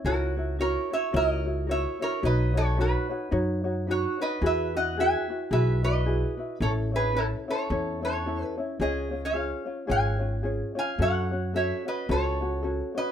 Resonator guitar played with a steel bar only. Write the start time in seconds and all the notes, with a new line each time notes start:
0.06 F#4 A#4
0.61 A#4 C#5
0.93 C#5 E5
1.16 A#4 E5
1.27 D#5
1.71 C#5 E5
2.02 A#4 C#5
2.25 B4 D#5
2.57 A4 C#5
2.81 F#4 B4
3.91 F#4 C#5
4.21 B4 D#5
4.46 B4 E5
4.77 D#5 F#5
5.00 E5 G#5
5.53 B4 E5
5.84 B4 D#5
6.62 A4 C#5
6.96 G#4 B4
7.17 E4 A4
7.50 A4 C#5
8.05 A4 C#5
8.81 G#4 D#5
9.25 C#5 F5
9.91 F5 G#5
10.79 F5 G#5
11.02 C#5 F#5
11.56 C#5 E5
11.88 B4 D#5
12.11 A4 C#5
12.98 B4 D#5